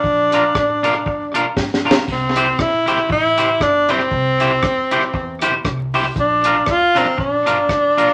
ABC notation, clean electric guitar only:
X:1
M:4/4
L:1/8
Q:"Swing" 1/4=118
K:Cmix
V:1 name="Clean electric guitar"
z [DFB] z [DFB] z [DFB] z [DFB] | z [EGc] z [EGc] z [EGc] z [EGc] | z [EGc] z [EGc] z [EGc] z [EGc] | z [DFB] z [DFB] z [DFB] z [DFB] |]